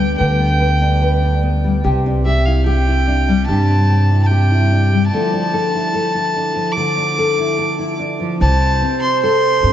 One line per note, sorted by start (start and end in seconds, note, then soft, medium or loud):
0.00 0.16 D2 medium
0.00 0.17 D3 medium
0.00 1.62 G3 medium
0.00 0.38 B3 soft
0.00 0.81 D4 medium
0.00 0.17 B4 medium
0.00 0.13 G5 medium
0.18 1.80 D2 medium
0.18 1.78 D3 medium
0.18 0.59 B4 medium
0.18 1.38 G5 medium
0.39 1.42 B3 soft
0.60 1.01 B4 medium
0.81 1.23 D4 soft
1.02 1.79 B4 medium
1.23 2.06 D4 soft
1.43 1.79 B3 soft
1.64 1.79 G3 medium
1.84 3.45 C2 medium
1.84 3.47 C3 medium
1.84 2.25 G4 medium
2.06 3.07 D4 medium
2.26 2.65 G4 medium
2.26 2.47 E5 medium
2.46 2.88 E4 soft
2.46 2.65 F5 medium
2.66 3.48 G4 medium
2.66 3.44 G5 medium
2.88 4.11 E4 medium
3.07 3.69 D4 soft
3.28 4.91 G3 medium
3.47 5.09 G2 medium
3.47 5.12 C3 medium
3.47 3.89 G4 medium
3.47 4.19 A5 medium
3.70 4.71 D4 soft
3.90 4.30 G4 medium
4.11 4.51 E4 soft
4.23 5.06 G5 medium
4.23 4.28 A5 soft
4.31 5.13 G4 medium
4.51 5.14 E4 soft
4.72 5.08 D4 medium
4.92 5.08 G3 soft
5.07 6.74 A5 medium
5.12 6.75 D3 medium
5.12 6.54 F3 medium
5.12 5.32 D4 medium
5.12 5.73 E4 soft
5.12 5.52 A4 medium
5.33 6.35 D4 medium
5.53 5.93 A4 medium
5.75 6.13 E4 soft
5.94 6.75 A4 medium
6.15 7.37 E4 soft
6.36 6.96 D4 soft
6.55 8.19 F3 medium
6.72 7.98 D6 medium
6.76 8.36 D3 medium
6.76 7.17 A4 medium
6.97 7.98 D4 soft
7.18 7.57 A4 medium
7.38 7.77 E4 soft
7.58 8.36 A4 medium
7.79 8.36 E4 soft
7.99 8.36 D4 soft
8.20 8.41 F3 soft
8.40 8.80 C2 medium
8.40 9.73 C3 medium
8.40 9.73 C5 medium
8.40 8.99 A5 loud
8.81 9.64 C4 medium
9.02 9.21 C6 medium
9.22 9.73 A4 medium
9.22 9.73 C6 medium
9.63 9.73 G2 medium
9.63 9.73 C4 soft